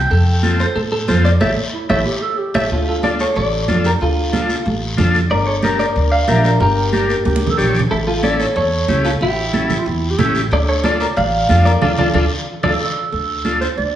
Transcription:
Already playing: G5
0.11 F2 A4, high conga, long guiro
0.43 C4 F4 A4, high conga, short guiro
0.60 C5, short guiro
0.76 A2 A4, high conga, long guiro
0.92 A4
1.08 F2 C4 F4 A4 C5, high conga, short guiro
1.25 D5, short guiro
1.41 A1 E4 G4 A4 C#5 E5, high conga, long guiro
1.74 E4
1.89 A1 E4 G4 A4 C#5 E5, high conga, long guiro
2.06 G4
2.22 A4
2.38 G4
2.54 A1 E4 G4 A4 C#5 E5, high conga, long guiro
2.71 D2 F4 A4, high conga, long guiro
2.88 F4 A4
3.03 D4 F4 A4 D5, high conga, short guiro
3.19 A4 C#5, short guiro
3.36 A1 A4 D5, high conga, long guiro
3.68 F2 D4 F4 A4, high conga, short guiro
3.84 G4 A#4, short guiro
4.00 D2 F4 A4, high conga, long guiro
4.33 D4 F4 A4, high conga, short guiro
4.49 short guiro
4.66 A1, high conga, long guiro
4.97 F2 D4 F4 A4, high conga, low conga, short guiro
5.14 short guiro
5.30 G1 A#4 D5, high conga, long guiro
5.47 A4 C#5
5.63 D4 G4 A#4 D5, high conga, short guiro
5.79 A#4 D5, short guiro
5.95 D2, high conga, long guiro
6.12 D5 F5
6.28 A#1 D4 G4 A#4 E5, high conga, short guiro
6.44 A#4 D5, short guiro
6.60 G1 G4 A#4, high conga, long guiro
6.92 D4 G4 A#4, high conga, short guiro
7.10 short guiro
7.25 D2 G4, high conga, long guiro
7.36 high conga
7.47 A4, low conga
7.57 A#1 D4 G4 C#5, short guiro
7.69 low conga
7.75 short guiro
7.80 low conga
7.91 A1 E4 A4, high conga, long guiro
8.07 F4 A4
8.23 C#4 E4 A4 D5, high conga, short guiro
8.40 A4 C#5, short guiro
8.56 E2 A4 C#5, high conga, long guiro
8.88 C#2 C#4 E4 G4, high conga, short guiro
9.05 F4 A4, short guiro
9.21 A1 E4 G4, high conga, long guiro
9.53 C#4 E4 A4, high conga, short guiro
9.70 low conga, short guiro
9.78 F4
9.86 E2 E4, high conga, long guiro
10.11 G4
10.18 A1 C#4 E4 G4 A4, high conga, low conga, short guiro
10.35 short guiro
10.51 D2 A4 D5, high conga, long guiro
10.68 A4 C#5
10.84 D4 F4 A4 D5, high conga, short guiro
11.00 A#4 D5, short guiro
11.16 A1 D5 F5, high conga, long guiro
11.49 F2 D4 F4 A4, high conga, short guiro
11.65 A#4 D5, short guiro
11.81 D2 D4 F4 A4 D5, low conga, long guiro
11.98 D2 D4 F4 A4 D5, low conga, long guiro
12.14 D2 D4 F4 A4 D5, low conga, long guiro
12.63 D2 D4 F4 A4 D5, low conga, long guiro
12.71 A4
12.79 A4
13.12 D2 A4, high conga, long guiro
13.45 D4 F4 A4, high conga, short guiro
13.61 C5, short guiro
13.77 D2 D5, high conga, long guiro

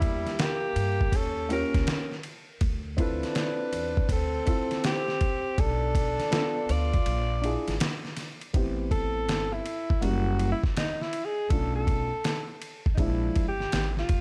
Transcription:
Already playing: E2 G3 A#3 D4 E4 G4
0.02 kick, ride
0.26 snare, ride
0.39 A#3 G4, snare, hi-hat pedal, ride
0.76 G2, ride
1.01 kick
1.12 D#2 C#4 A4, kick, ride
1.49 A#3 C#4 F4 G4 A#4, ride
1.74 C#2, kick, snare, ride
1.87 snare, hi-hat pedal, ride
2.11 snare
2.23 ride
2.61 D2, kick, ride
2.97 C4 D4 E4 F4 A4, kick, ride
3.02 B4
3.23 snare, ride
3.35 snare, hi-hat pedal, ride
3.73 E2, ride
3.97 kick
4.09 D2 C4 A4, kick, ride
4.46 C4 E4 F4 A4, kick, ride
4.71 snare, ride
4.84 C4 G4, snare, hi-hat pedal, ride
5.08 snare
5.21 kick, ride
5.58 B1 D4 A4, kick, ride
5.95 kick, ride
6.19 snare, ride
6.30 B3 C4 F4 A4, snare, hi-hat pedal, ride
6.38 D4
6.69 D2 F4 D5, ride
6.94 kick, ride
7.06 A#1, ride
7.42 D4 E4 F4 G#4, ride
7.68 G#1, snare, ride
7.80 snare, hi-hat pedal, ride
8.05 snare
8.17 snare, ride
8.41 ride
8.53 A1 B3 C4 E4 G4, kick, ride
8.91 A4, kick, ride
9.28 G1, snare, hi-hat pedal, ride
9.53 E4
9.66 ride
9.90 kick
10.01 F#1 G3 A#3 C#4 E4 F#4, ride
10.39 ride
10.52 E4
10.63 E1, kick, snare
10.77 D#4, snare, hi-hat pedal, ride
11.01 E4, snare
11.13 ride
11.25 G#4
11.49 B1 A3 C#4 D4 F4 A4, kick, ride
11.76 A4
11.87 kick, ride
12.24 snare, hi-hat pedal, ride
12.62 ride
12.86 kick
12.95 A#1 F3 G#3 D#4, kick, ride
12.99 D4 E4
13.36 G1, kick, ride
13.49 G4
13.60 snare
13.72 G#1, snare, hi-hat pedal, ride
13.97 F4, snare
14.09 E1, kick, ride

